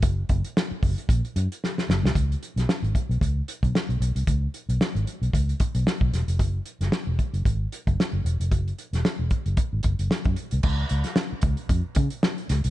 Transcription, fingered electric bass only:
0.03 F#1
0.30 F#1
0.71 muted fingered electric bass stroke
0.83 F#1
1.09 A#1
1.36 F#2
1.89 F#1
2.03 C2
2.15 C#2
2.56 B1
2.82 G#1
3.09 B1
3.21 C#2
3.63 B1
3.89 B1
4.00 B1
4.16 C2
4.27 C#2
4.69 B1
4.95 G#1
5.22 B1
5.33 C#2
5.75 B1
6.01 B1
6.13 E1
6.28 F1
6.39 F#1
6.81 F#1
7.07 E1
7.33 F#1
7.46 G#1
7.87 F#1
8.13 F#1
8.25 E1
8.40 F1
8.51 F#1
8.93 E1
9.19 E1
9.46 F#1
9.73 G#1
9.84 F#1
9.99 F#1
10.26 F#2
10.53 C2
10.64 C#2
10.91 C#2
11.33 muted fingered electric bass stroke
11.43 C#2
11.69 F2
11.96 C#3
12.50 C#2
12.65 C2

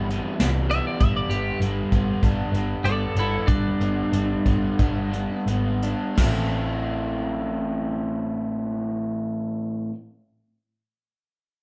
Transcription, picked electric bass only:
Already playing: G1
0.39 C2
1.00 G1
1.29 G1
1.60 G1
1.92 G1
2.23 G1
2.52 G1
2.84 G1
3.15 G1
3.48 G1
3.80 G1
4.12 G1
4.46 G1
4.79 G1
5.46 G#1
6.18 A1

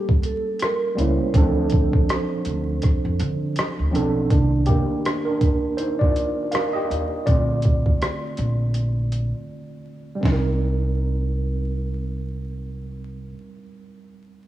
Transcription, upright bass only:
0.98 C#2
1.34 D2
2.46 D2
3.05 F2
3.20 D3
3.79 D2
3.94 B1
4.31 C2
6.91 D#2
7.27 A#1
8.39 A#1
10.23 C2

